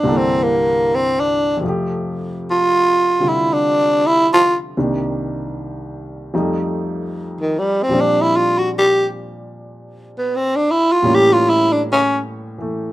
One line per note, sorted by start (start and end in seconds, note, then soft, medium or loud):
0.00 1.61 C2 medium
0.00 0.06 D3 soft
0.00 0.08 A#3 soft
0.00 0.19 D4 medium
0.04 1.61 G2 soft
0.04 1.62 D3 soft
0.04 1.63 E3 soft
0.04 1.63 A#3 soft
0.09 1.63 A4 medium
0.18 0.44 C4 medium
0.43 0.96 A#3 medium
0.95 1.22 C4 medium
1.20 1.59 D4 medium
1.57 4.73 F2 soft
1.57 3.18 C3 soft
1.63 4.76 F3 soft
1.63 4.77 A3 soft
1.69 4.78 G4 soft
2.51 3.30 F4 medium
3.19 4.75 C3 soft
3.19 4.76 D3 soft
3.19 4.76 G3 soft
3.19 4.77 F4 soft
3.29 3.54 E4 medium
3.53 4.08 D4 medium
4.07 4.28 E4 medium
4.33 4.56 F4 medium
4.77 6.33 C2 soft
4.77 6.34 C3 soft
4.77 6.34 D#3 soft
4.77 6.34 A#3 soft
4.77 6.34 D4 soft
6.34 7.91 F2 soft
6.34 7.88 F3 soft
6.34 7.89 G3 soft
6.34 7.91 A3 soft
6.34 7.92 D#4 medium
7.41 7.60 D#3 medium
7.59 7.85 G3 medium
7.83 8.02 C4 medium
7.88 11.02 A#2 soft
7.88 11.02 F3 soft
7.88 11.02 G3 soft
7.92 11.04 C4 soft
7.92 11.04 D4 medium
8.01 8.23 D4 medium
8.21 8.38 E4 medium
8.36 8.60 F4 medium
8.58 8.70 F#4 medium
8.79 9.07 G4 medium
10.18 10.37 B3 medium
10.36 10.58 C4 medium
10.56 10.72 D4 medium
10.71 10.93 E4 medium
10.92 11.16 F4 medium
11.03 12.93 A2 medium
11.03 12.57 E3 soft
11.03 12.93 G3 soft
11.03 12.93 A#3 soft
11.03 12.93 C#4 medium
11.14 11.34 G4 medium
11.33 11.51 F4 medium
11.50 11.74 E4 medium
11.72 11.83 D4 medium
11.92 12.19 C#4 medium
12.58 12.93 E3 soft
12.58 12.93 A3 soft